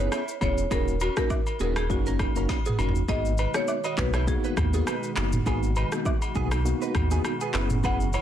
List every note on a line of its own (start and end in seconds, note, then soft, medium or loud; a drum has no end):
0.00 0.20 B3 medium
0.00 0.20 C#4 medium
0.00 0.20 E4 medium
0.00 0.20 G#4 medium
0.00 0.38 C#5 loud
0.12 0.35 E4 medium
0.12 0.34 C#5 medium
0.12 cross-stick medium
0.12 high agogo medium
0.12 shaker medium
0.28 shaker medium
0.41 0.66 E1 loud
0.41 0.64 B3 medium
0.41 0.64 C#4 medium
0.41 0.64 E4 medium
0.41 0.64 G#4 medium
0.41 0.56 C#5 medium
0.41 kick medium
0.41 high agogo medium
0.41 shaker soft
0.58 shaker medium
0.71 1.09 D#1 loud
0.71 0.94 A#3 medium
0.71 0.94 C#4 medium
0.71 0.84 C#4 medium
0.71 0.94 D#4 medium
0.71 0.94 F#4 loud
0.71 0.84 G#4 medium
0.71 0.99 A#4 loud
0.71 kick loud
0.71 high agogo medium
0.71 shaker medium
0.88 shaker soft
1.00 1.14 C#4 medium
1.00 1.16 F#4 medium
1.00 1.13 A#4 medium
1.00 high agogo medium
1.00 shaker medium
1.17 1.38 A#3 medium
1.17 1.39 C#4 medium
1.17 1.39 D#4 medium
1.17 1.39 F#4 medium
1.17 1.60 A#4 medium
1.17 kick medium
1.17 cross-stick loud
1.17 shaker soft
1.30 kick medium
1.30 low woodblock medium
1.30 shaker medium
1.46 high agogo medium
1.46 shaker soft
1.60 1.91 D#1 loud
1.60 1.83 A#3 medium
1.60 1.73 B3 medium
1.60 1.83 C#4 medium
1.60 1.83 D#4 medium
1.60 1.83 F#4 medium
1.60 1.73 G#4 medium
1.60 1.77 A#4 medium
1.60 shaker soft
1.76 1.89 G#4 medium
1.76 cross-stick loud
1.76 high agogo medium
1.76 shaker medium
1.90 2.28 F#1 loud
1.90 2.32 A#3 medium
1.90 2.32 C#4 medium
1.90 2.32 D#4 medium
1.90 2.32 F#4 loud
1.90 2.76 F#4 medium
1.90 kick medium
1.90 shaker medium
2.06 2.17 C#4 medium
2.06 2.17 A#4 medium
2.06 shaker medium
2.19 kick loud
2.19 cross-stick loud
2.19 high agogo medium
2.19 shaker medium
2.35 2.47 F#1 loud
2.35 2.57 A#3 medium
2.35 2.57 C#4 medium
2.35 2.47 C#4 medium
2.35 2.57 D#4 medium
2.35 2.57 F#4 medium
2.35 2.46 A#4 medium
2.35 shaker medium
2.49 kick medium
2.49 snare medium
2.49 high agogo medium
2.49 shaker medium
2.66 2.76 B3 medium
2.66 2.76 G#4 medium
2.66 mid tom medium
2.66 shaker medium
2.79 3.03 F#1 medium
2.79 3.02 A#3 medium
2.79 3.02 C#4 medium
2.79 2.92 C#4 medium
2.79 3.02 D#4 medium
2.79 3.02 F#4 medium
2.79 2.92 A#4 medium
2.79 high agogo medium
2.79 shaker soft
2.89 floor tom loud
2.95 shaker medium
3.08 3.47 G#1 loud
3.08 8.22 B2 medium
3.08 7.50 D#3 medium
3.08 7.50 G#3 medium
3.08 3.31 A#3 medium
3.08 3.32 B3 medium
3.08 3.22 B3 medium
3.08 3.32 D#4 medium
3.08 8.22 F#4 medium
3.08 3.32 F#4 loud
3.08 3.21 G#4 loud
3.08 3.52 D#5 loud
3.08 kick loud
3.08 high agogo medium
3.08 shaker medium
3.25 shaker medium
3.38 3.51 D#4 medium
3.38 3.51 B4 medium
3.38 high agogo medium
3.38 shaker medium
3.54 3.76 A#3 medium
3.54 3.76 B3 medium
3.54 3.76 D#4 medium
3.54 3.76 F#4 medium
3.54 3.99 C#5 loud
3.54 cross-stick loud
3.54 shaker medium
3.68 low woodblock medium
3.68 shaker medium
3.84 3.95 F#4 medium
3.84 3.95 D#5 medium
3.84 high agogo medium
3.84 shaker soft
3.97 4.36 B1 medium
3.97 4.21 A#3 medium
3.97 4.21 B3 medium
3.97 4.21 D#4 medium
3.97 4.21 F#4 medium
3.97 4.26 B4 medium
3.97 kick medium
3.97 clap medium
3.97 shaker soft
4.14 4.25 E4 medium
4.14 4.25 C#5 medium
4.14 cross-stick loud
4.14 high agogo medium
4.14 shaker medium
4.27 4.69 A#3 loud
4.27 4.69 B3 medium
4.27 4.70 D#4 medium
4.27 4.70 F#4 loud
4.27 5.13 G#4 medium
4.27 kick medium
4.27 shaker medium
4.44 4.55 D#4 medium
4.44 4.54 B4 medium
4.44 shaker medium
4.57 4.82 D#2 medium
4.57 kick loud
4.57 cross-stick loud
4.57 mid tom medium
4.57 high agogo medium
4.57 shaker medium
4.73 4.95 A#3 medium
4.73 4.95 B3 medium
4.73 4.84 B3 medium
4.73 4.95 D#4 medium
4.73 4.95 F#4 medium
4.73 4.84 G#4 medium
4.73 shaker loud
4.87 5.10 D#4 medium
4.87 5.09 B4 medium
4.87 cross-stick medium
4.87 high agogo medium
4.87 shaker medium
5.03 shaker medium
5.16 5.41 F#1 medium
5.16 5.39 A#3 medium
5.16 5.40 B3 medium
5.16 5.40 D#4 medium
5.16 5.40 F#4 medium
5.16 clap medium
5.16 high agogo medium
5.16 shaker soft
5.33 mid tom medium
5.33 shaker loud
5.46 5.84 G#1 loud
5.46 5.69 A#3 medium
5.46 5.69 B3 medium
5.46 5.59 B3 medium
5.46 5.69 D#4 medium
5.46 5.69 F#4 loud
5.46 5.59 G#4 loud
5.46 kick loud
5.46 high agogo medium
5.46 shaker medium
5.63 shaker soft
5.75 5.89 D#4 medium
5.75 5.89 B4 medium
5.75 high agogo medium
5.75 shaker medium
5.92 6.14 A#3 medium
5.92 6.14 B3 medium
5.92 6.14 D#4 medium
5.92 6.14 F#4 medium
5.92 cross-stick loud
5.92 shaker medium
6.05 kick medium
6.05 low woodblock medium
6.05 shaker medium
6.22 high agogo medium
6.22 shaker soft
6.35 6.74 B1 medium
6.35 6.58 A#3 medium
6.35 6.58 B3 medium
6.35 6.48 B3 medium
6.35 6.58 D#4 medium
6.35 6.58 F#4 medium
6.35 6.48 G#4 medium
6.35 kick medium
6.35 shaker soft
6.51 cross-stick loud
6.51 high agogo medium
6.51 shaker medium
6.65 7.07 A#3 loud
6.65 7.07 B3 medium
6.65 7.07 D#4 medium
6.65 7.07 F#4 loud
6.65 shaker medium
6.82 6.92 D#4 medium
6.82 6.92 B4 medium
6.82 shaker soft
6.95 7.19 D#2 medium
6.95 kick loud
6.95 cross-stick loud
6.95 mid tom medium
6.95 high agogo medium
6.95 shaker medium
7.11 7.32 A#3 medium
7.11 7.33 B3 medium
7.11 7.22 B3 medium
7.11 7.33 D#4 medium
7.11 7.33 F#4 medium
7.11 7.21 G#4 medium
7.11 shaker loud
7.25 cross-stick medium
7.25 high agogo medium
7.25 shaker medium
7.41 7.52 B3 medium
7.41 7.51 G#4 medium
7.41 shaker medium
7.54 8.17 F#1 loud
7.54 8.22 E3 medium
7.54 7.77 B3 medium
7.54 7.77 C#4 medium
7.54 8.22 C#4 medium
7.54 7.77 E4 medium
7.54 7.67 E4 medium
7.54 7.77 G#4 medium
7.54 7.67 B4 medium
7.54 cross-stick medium
7.54 clap medium
7.54 high agogo medium
7.54 shaker medium
7.70 mid tom loud
7.70 shaker loud
7.83 8.07 B3 medium
7.83 8.07 C#4 medium
7.83 8.07 E4 medium
7.83 7.97 E4 medium
7.83 8.07 G#4 loud
7.83 7.97 B4 loud
7.83 8.22 F#5 loud
7.83 kick loud
7.83 high agogo medium
7.83 shaker medium
8.00 shaker medium
8.13 8.22 E4 medium
8.13 8.22 C#5 medium
8.13 high agogo medium
8.13 shaker medium